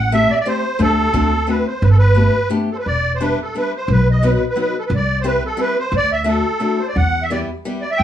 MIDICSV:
0, 0, Header, 1, 4, 480
1, 0, Start_track
1, 0, Key_signature, 1, "minor"
1, 0, Tempo, 341880
1, 1120, Time_signature, 3, 2, 24, 8
1, 11278, End_track
2, 0, Start_track
2, 0, Title_t, "Accordion"
2, 0, Program_c, 0, 21
2, 0, Note_on_c, 0, 78, 86
2, 169, Note_off_c, 0, 78, 0
2, 190, Note_on_c, 0, 76, 104
2, 432, Note_on_c, 0, 74, 100
2, 437, Note_off_c, 0, 76, 0
2, 486, Note_off_c, 0, 74, 0
2, 489, Note_on_c, 0, 76, 74
2, 541, Note_off_c, 0, 76, 0
2, 567, Note_on_c, 0, 74, 89
2, 661, Note_on_c, 0, 72, 83
2, 667, Note_off_c, 0, 74, 0
2, 1140, Note_off_c, 0, 72, 0
2, 1152, Note_on_c, 0, 69, 109
2, 2100, Note_on_c, 0, 71, 75
2, 2113, Note_off_c, 0, 69, 0
2, 2342, Note_off_c, 0, 71, 0
2, 2350, Note_on_c, 0, 72, 65
2, 2565, Note_on_c, 0, 71, 80
2, 2573, Note_off_c, 0, 72, 0
2, 2653, Note_off_c, 0, 71, 0
2, 2673, Note_on_c, 0, 69, 81
2, 2764, Note_off_c, 0, 69, 0
2, 2794, Note_on_c, 0, 71, 94
2, 3491, Note_off_c, 0, 71, 0
2, 3813, Note_on_c, 0, 69, 51
2, 3863, Note_on_c, 0, 72, 52
2, 3886, Note_off_c, 0, 69, 0
2, 3894, Note_off_c, 0, 72, 0
2, 3907, Note_on_c, 0, 71, 47
2, 4021, Note_off_c, 0, 71, 0
2, 4024, Note_on_c, 0, 74, 94
2, 4397, Note_off_c, 0, 74, 0
2, 4426, Note_on_c, 0, 72, 73
2, 4512, Note_on_c, 0, 71, 76
2, 4521, Note_off_c, 0, 72, 0
2, 4761, Note_off_c, 0, 71, 0
2, 4800, Note_on_c, 0, 69, 63
2, 5009, Note_off_c, 0, 69, 0
2, 5017, Note_on_c, 0, 71, 79
2, 5229, Note_off_c, 0, 71, 0
2, 5282, Note_on_c, 0, 72, 74
2, 5487, Note_off_c, 0, 72, 0
2, 5498, Note_on_c, 0, 71, 84
2, 5729, Note_off_c, 0, 71, 0
2, 5770, Note_on_c, 0, 75, 74
2, 5955, Note_on_c, 0, 71, 81
2, 5967, Note_off_c, 0, 75, 0
2, 6068, Note_off_c, 0, 71, 0
2, 6089, Note_on_c, 0, 71, 64
2, 6245, Note_off_c, 0, 71, 0
2, 6305, Note_on_c, 0, 71, 76
2, 6436, Note_off_c, 0, 71, 0
2, 6464, Note_on_c, 0, 71, 76
2, 6688, Note_off_c, 0, 71, 0
2, 6730, Note_on_c, 0, 69, 69
2, 6799, Note_off_c, 0, 69, 0
2, 6829, Note_on_c, 0, 71, 64
2, 6914, Note_off_c, 0, 71, 0
2, 6953, Note_on_c, 0, 74, 86
2, 7289, Note_off_c, 0, 74, 0
2, 7314, Note_on_c, 0, 72, 70
2, 7388, Note_on_c, 0, 71, 89
2, 7395, Note_off_c, 0, 72, 0
2, 7628, Note_off_c, 0, 71, 0
2, 7665, Note_on_c, 0, 69, 84
2, 7870, Note_off_c, 0, 69, 0
2, 7876, Note_on_c, 0, 71, 95
2, 8110, Note_off_c, 0, 71, 0
2, 8133, Note_on_c, 0, 72, 85
2, 8344, Note_off_c, 0, 72, 0
2, 8376, Note_on_c, 0, 74, 118
2, 8581, Note_off_c, 0, 74, 0
2, 8601, Note_on_c, 0, 76, 89
2, 8816, Note_on_c, 0, 69, 85
2, 8821, Note_off_c, 0, 76, 0
2, 9540, Note_on_c, 0, 72, 66
2, 9575, Note_off_c, 0, 69, 0
2, 9651, Note_off_c, 0, 72, 0
2, 9652, Note_on_c, 0, 74, 59
2, 9778, Note_off_c, 0, 74, 0
2, 9783, Note_on_c, 0, 78, 92
2, 10144, Note_on_c, 0, 76, 79
2, 10165, Note_off_c, 0, 78, 0
2, 10256, Note_off_c, 0, 76, 0
2, 10269, Note_on_c, 0, 74, 77
2, 10382, Note_off_c, 0, 74, 0
2, 10965, Note_on_c, 0, 74, 67
2, 11098, Note_off_c, 0, 74, 0
2, 11103, Note_on_c, 0, 76, 80
2, 11199, Note_on_c, 0, 79, 110
2, 11224, Note_off_c, 0, 76, 0
2, 11278, Note_off_c, 0, 79, 0
2, 11278, End_track
3, 0, Start_track
3, 0, Title_t, "Steel-string acoustic guitar"
3, 0, Program_c, 1, 25
3, 172, Note_on_c, 1, 57, 67
3, 173, Note_on_c, 1, 60, 52
3, 182, Note_on_c, 1, 67, 68
3, 197, Note_on_c, 1, 64, 60
3, 421, Note_off_c, 1, 57, 0
3, 424, Note_off_c, 1, 60, 0
3, 424, Note_off_c, 1, 67, 0
3, 427, Note_off_c, 1, 64, 0
3, 641, Note_on_c, 1, 57, 56
3, 647, Note_on_c, 1, 60, 43
3, 649, Note_on_c, 1, 67, 56
3, 655, Note_on_c, 1, 64, 38
3, 890, Note_off_c, 1, 60, 0
3, 891, Note_off_c, 1, 57, 0
3, 894, Note_off_c, 1, 64, 0
3, 894, Note_off_c, 1, 67, 0
3, 1106, Note_on_c, 1, 57, 69
3, 1109, Note_on_c, 1, 60, 48
3, 1121, Note_on_c, 1, 62, 56
3, 1130, Note_on_c, 1, 67, 62
3, 1496, Note_off_c, 1, 57, 0
3, 1500, Note_off_c, 1, 60, 0
3, 1502, Note_off_c, 1, 62, 0
3, 1503, Note_off_c, 1, 67, 0
3, 1594, Note_on_c, 1, 57, 74
3, 1600, Note_on_c, 1, 60, 75
3, 1605, Note_on_c, 1, 66, 70
3, 1610, Note_on_c, 1, 62, 67
3, 1841, Note_off_c, 1, 57, 0
3, 1844, Note_off_c, 1, 60, 0
3, 1844, Note_off_c, 1, 66, 0
3, 1846, Note_off_c, 1, 62, 0
3, 2064, Note_on_c, 1, 57, 58
3, 2070, Note_on_c, 1, 60, 50
3, 2073, Note_on_c, 1, 62, 42
3, 2086, Note_on_c, 1, 66, 53
3, 2317, Note_off_c, 1, 57, 0
3, 2320, Note_off_c, 1, 62, 0
3, 2321, Note_off_c, 1, 60, 0
3, 2322, Note_off_c, 1, 66, 0
3, 3014, Note_on_c, 1, 57, 54
3, 3020, Note_on_c, 1, 62, 52
3, 3030, Note_on_c, 1, 67, 59
3, 3035, Note_on_c, 1, 59, 49
3, 3278, Note_off_c, 1, 57, 0
3, 3283, Note_off_c, 1, 62, 0
3, 3284, Note_off_c, 1, 59, 0
3, 3285, Note_off_c, 1, 67, 0
3, 3505, Note_on_c, 1, 57, 59
3, 3516, Note_on_c, 1, 67, 69
3, 3517, Note_on_c, 1, 59, 54
3, 3521, Note_on_c, 1, 62, 52
3, 3770, Note_off_c, 1, 57, 0
3, 3774, Note_off_c, 1, 59, 0
3, 3776, Note_off_c, 1, 67, 0
3, 3778, Note_off_c, 1, 62, 0
3, 4500, Note_on_c, 1, 55, 64
3, 4502, Note_on_c, 1, 59, 51
3, 4505, Note_on_c, 1, 62, 60
3, 4516, Note_on_c, 1, 64, 70
3, 4747, Note_off_c, 1, 59, 0
3, 4749, Note_off_c, 1, 55, 0
3, 4750, Note_off_c, 1, 62, 0
3, 4756, Note_off_c, 1, 64, 0
3, 4980, Note_on_c, 1, 62, 45
3, 4989, Note_on_c, 1, 55, 50
3, 4994, Note_on_c, 1, 64, 50
3, 4999, Note_on_c, 1, 59, 34
3, 5228, Note_off_c, 1, 55, 0
3, 5229, Note_off_c, 1, 59, 0
3, 5229, Note_off_c, 1, 62, 0
3, 5233, Note_off_c, 1, 64, 0
3, 5933, Note_on_c, 1, 54, 63
3, 5941, Note_on_c, 1, 59, 63
3, 5946, Note_on_c, 1, 63, 50
3, 5950, Note_on_c, 1, 66, 71
3, 6178, Note_off_c, 1, 54, 0
3, 6181, Note_off_c, 1, 59, 0
3, 6181, Note_off_c, 1, 63, 0
3, 6186, Note_off_c, 1, 66, 0
3, 6397, Note_on_c, 1, 54, 60
3, 6406, Note_on_c, 1, 59, 44
3, 6412, Note_on_c, 1, 66, 63
3, 6414, Note_on_c, 1, 63, 48
3, 6650, Note_off_c, 1, 54, 0
3, 6651, Note_off_c, 1, 59, 0
3, 6651, Note_off_c, 1, 63, 0
3, 6656, Note_off_c, 1, 66, 0
3, 7355, Note_on_c, 1, 60, 63
3, 7360, Note_on_c, 1, 55, 58
3, 7363, Note_on_c, 1, 67, 80
3, 7369, Note_on_c, 1, 64, 57
3, 7605, Note_off_c, 1, 55, 0
3, 7605, Note_off_c, 1, 60, 0
3, 7609, Note_off_c, 1, 64, 0
3, 7609, Note_off_c, 1, 67, 0
3, 7818, Note_on_c, 1, 55, 63
3, 7825, Note_on_c, 1, 60, 44
3, 7834, Note_on_c, 1, 67, 57
3, 7836, Note_on_c, 1, 64, 47
3, 8075, Note_off_c, 1, 55, 0
3, 8078, Note_off_c, 1, 60, 0
3, 8082, Note_off_c, 1, 64, 0
3, 8083, Note_off_c, 1, 67, 0
3, 8766, Note_on_c, 1, 57, 69
3, 8778, Note_on_c, 1, 62, 61
3, 8783, Note_on_c, 1, 64, 45
3, 8784, Note_on_c, 1, 66, 75
3, 9037, Note_off_c, 1, 57, 0
3, 9039, Note_off_c, 1, 64, 0
3, 9041, Note_off_c, 1, 62, 0
3, 9043, Note_off_c, 1, 66, 0
3, 9264, Note_on_c, 1, 57, 54
3, 9271, Note_on_c, 1, 66, 54
3, 9276, Note_on_c, 1, 62, 45
3, 9277, Note_on_c, 1, 64, 33
3, 9534, Note_off_c, 1, 57, 0
3, 9536, Note_off_c, 1, 62, 0
3, 9537, Note_off_c, 1, 64, 0
3, 9537, Note_off_c, 1, 66, 0
3, 10255, Note_on_c, 1, 55, 67
3, 10265, Note_on_c, 1, 59, 53
3, 10265, Note_on_c, 1, 64, 51
3, 10270, Note_on_c, 1, 67, 58
3, 10514, Note_off_c, 1, 55, 0
3, 10515, Note_off_c, 1, 64, 0
3, 10518, Note_off_c, 1, 59, 0
3, 10518, Note_off_c, 1, 67, 0
3, 10744, Note_on_c, 1, 55, 67
3, 10750, Note_on_c, 1, 59, 44
3, 10753, Note_on_c, 1, 64, 55
3, 10761, Note_on_c, 1, 67, 46
3, 10993, Note_off_c, 1, 55, 0
3, 10995, Note_off_c, 1, 64, 0
3, 10997, Note_off_c, 1, 59, 0
3, 10999, Note_off_c, 1, 67, 0
3, 11278, End_track
4, 0, Start_track
4, 0, Title_t, "Upright bass"
4, 0, Program_c, 2, 32
4, 0, Note_on_c, 2, 33, 104
4, 315, Note_off_c, 2, 33, 0
4, 1118, Note_on_c, 2, 38, 100
4, 1426, Note_off_c, 2, 38, 0
4, 1591, Note_on_c, 2, 38, 97
4, 2214, Note_off_c, 2, 38, 0
4, 2557, Note_on_c, 2, 31, 110
4, 3187, Note_off_c, 2, 31, 0
4, 4017, Note_on_c, 2, 28, 80
4, 4641, Note_off_c, 2, 28, 0
4, 5448, Note_on_c, 2, 35, 108
4, 6067, Note_off_c, 2, 35, 0
4, 6877, Note_on_c, 2, 36, 108
4, 7498, Note_off_c, 2, 36, 0
4, 8308, Note_on_c, 2, 38, 106
4, 8942, Note_off_c, 2, 38, 0
4, 9770, Note_on_c, 2, 40, 94
4, 10402, Note_off_c, 2, 40, 0
4, 11225, Note_on_c, 2, 33, 98
4, 11278, Note_off_c, 2, 33, 0
4, 11278, End_track
0, 0, End_of_file